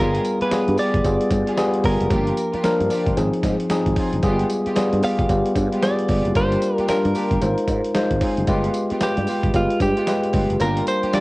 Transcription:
Already playing: B3 F4
0.00 G1 G3 B3 F4 G4 G#4 A#4
0.15 closed hi-hat
0.25 closed hi-hat, tambourine
0.40 B3 F4 G4 G#4 B4, muted fretless electric bass stroke, closed hi-hat
0.51 G3 B3 F4 G#4, muted fretless electric bass stroke, snare, closed hi-hat, tambourine, cowbell
0.68 G2, closed hi-hat
0.77 B3 F4 G4 G#4 D5, open hi-hat, tambourine
0.94 G1, kick, closed hi-hat
1.04 G1 G3 B3 F4 G#4, kick, closed hi-hat, tambourine, cowbell
1.21 closed hi-hat
1.31 G2, kick, closed hi-hat, tambourine, cowbell
1.47 B3 F4 G4 G#4, closed hi-hat
1.57 G3 B3 F4 G#4, snare, closed hi-hat, tambourine, cowbell
1.74 closed hi-hat
1.84 G1 B3 F4 G4 G#4 A#4, kick, open hi-hat, cowbell
2.01 F#1, closed hi-hat
2.10 G1 F3 A#3 D4 F4 G4, kick, closed hi-hat, tambourine, cowbell
2.27 closed hi-hat
2.37 closed hi-hat, tambourine
2.53 A#3 D4 F4 G4, muted fretless electric bass stroke, closed hi-hat
2.64 F3 A#3 D4 A#4, muted fretless electric bass stroke, snare, closed hi-hat, tambourine, cowbell
2.80 G2, closed hi-hat
2.90 A#3 D4 F4 G4, open hi-hat, tambourine
3.06 G1, kick, closed hi-hat
3.17 G#1 F3 C4 D#4 G#4, closed hi-hat, tambourine, cowbell
3.33 closed hi-hat
3.43 G#2, kick, snare, closed hi-hat, tambourine, cowbell
3.60 closed hi-hat
3.70 F3 C4 D#4 G#4, muted fretless electric bass stroke, snare, closed hi-hat, tambourine, cowbell
3.86 G#1, kick, closed hi-hat
3.96 C4 D#4 F4 G#4, kick, open hi-hat, cowbell
4.13 F#1, closed hi-hat
4.22 G1 G3 G#3 B3 F4 G4 G#4, kick, closed hi-hat, tambourine, cowbell
4.39 closed hi-hat
4.50 closed hi-hat, tambourine
4.65 G#3 B3 F4 G4, muted fretless electric bass stroke, closed hi-hat
4.76 G3 B3 F4 G#4, muted fretless electric bass stroke, snare, closed hi-hat, tambourine, cowbell
4.93 G2, closed hi-hat
5.02 G#3 B3 F4 G4 F5, open hi-hat, tambourine
5.19 G1, kick, closed hi-hat
5.29 G1 G3 B3 F4 G4, kick, closed hi-hat, tambourine, cowbell
5.46 closed hi-hat
5.55 G2, kick, closed hi-hat, tambourine, cowbell
5.72 G#3 B3 F4 G4, closed hi-hat
5.82 G3 B3 F4 G#4 D5, snare, closed hi-hat, tambourine, cowbell
5.99 closed hi-hat
6.08 G1 G#3 B3 F4 G4, kick, open hi-hat, cowbell
6.25 F#1, closed hi-hat
6.35 G1 G3 A#3 D4 F4 G4 A#4 C5, kick, closed hi-hat, tambourine, cowbell
6.52 closed hi-hat
6.62 closed hi-hat, tambourine
6.78 A#3 D4 F4 G4, muted fretless electric bass stroke, closed hi-hat
6.88 G3 D4 F4 A#4, muted fretless electric bass stroke, snare, closed hi-hat, tambourine, cowbell
7.05 G2, closed hi-hat
7.15 A#3 D4 F4 G4, open hi-hat, tambourine
7.31 G1, kick, closed hi-hat
7.41 G#1 G#3 D#4 F4 C5, closed hi-hat, tambourine, cowbell
7.58 closed hi-hat
7.68 G#2, kick, closed hi-hat, tambourine, cowbell
7.85 closed hi-hat
7.94 G#3 D#4 F4 C5, muted fretless electric bass stroke, snare, closed hi-hat, tambourine, cowbell
8.11 G#1, kick, closed hi-hat
8.21 C4 D#4 F4 G#4, kick, open hi-hat, cowbell
8.37 F#1, closed hi-hat
8.47 G1 G#3 B3 F4 G4 B4, kick, closed hi-hat, tambourine, cowbell
8.64 closed hi-hat
8.74 closed hi-hat, tambourine
8.90 G#3 B3 F4 G4, muted fretless electric bass stroke, closed hi-hat
9.01 G#3 F4 G4 B4, muted fretless electric bass stroke, snare, closed hi-hat, tambourine, cowbell
9.17 G2, closed hi-hat
9.27 G#3 B3 F4 G4, open hi-hat, tambourine
9.43 G1, kick, closed hi-hat
9.54 G1 G#3 F4 G4 B4, kick, closed hi-hat, tambourine, cowbell
9.70 closed hi-hat
9.80 G2 G4, kick, closed hi-hat, tambourine, cowbell
9.97 G#3 B3 F4 G4, closed hi-hat
10.07 G#3 F4 G4 B4, snare, closed hi-hat, tambourine, cowbell
10.23 closed hi-hat
10.33 G1 G#3 B3 F4 G4, kick, open hi-hat, cowbell
10.50 F#1, closed hi-hat
10.60 G1 G3 A#3 D4 F4 G4 A#4, closed hi-hat, tambourine, cowbell
10.77 closed hi-hat
10.87 C5, closed hi-hat, tambourine
11.02 A#3 D4 F4 G4, muted fretless electric bass stroke, closed hi-hat
11.13 G3 D4 F4 G4 D5, muted fretless electric bass stroke, snare, closed hi-hat, tambourine, cowbell

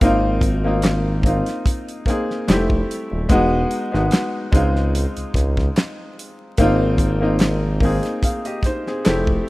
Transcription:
0.01 G#1 A#3 C4 D#4 F4, kick, closed hi-hat
0.41 kick, closed hi-hat
0.64 A#3 C4 D#4 F4
0.82 snare, clap, closed hi-hat
1.23 A#3 C4 D#4, kick, closed hi-hat
1.28 F4
1.46 snare, closed hi-hat
1.66 kick, closed hi-hat
1.88 closed hi-hat
2.06 A#3 C4 D#4 G#4, kick, snare, closed hi-hat
2.31 snare
2.47 F1 G3 C4 E4 G4, snare, clap, closed hi-hat
2.54 A3
2.70 kick
2.91 closed hi-hat
3.12 D#1
3.29 E1 G#3 B3 D#4 F#4, kick, closed hi-hat
3.71 closed hi-hat
3.92 G#1 G#3 B3 D#4 F#4, snare
4.11 snare, clap, closed hi-hat
4.52 C#2 G#3 C4 D#4 F4, kick, closed hi-hat
4.76 snare
4.95 closed hi-hat
5.17 C#2, closed hi-hat
5.34 C#2, kick, snare, closed hi-hat
5.57 kick, snare
5.76 snare, clap, closed hi-hat
6.19 closed hi-hat
6.58 G#1 A#3 C4 D#4 F4, kick, closed hi-hat
6.98 kick, closed hi-hat
7.21 A#3 C4 D#4 F4
7.39 snare, clap, closed hi-hat
7.80 A#3 C4 D#4, kick, open hi-hat
7.85 G#4
8.03 snare, closed hi-hat
8.23 G#4 F5, kick, closed hi-hat
8.45 G4 D#5, closed hi-hat
8.63 D#4 C5, kick, snare, closed hi-hat
8.87 C4 G#4, snare
9.05 F1 A3 C4 E4 G4, snare, clap, closed hi-hat
9.27 kick

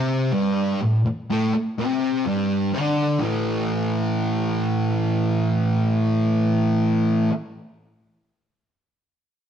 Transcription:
Already playing: C3 C4
0.32 G2 G3
0.81 A2
1.06 muted distorted electric guitar stroke
1.30 A2 A3
1.54 muted distorted electric guitar stroke
1.78 C3 C4
2.25 G2 G3
2.73 D3 D4
3.20 A2 E3
3.24 A3

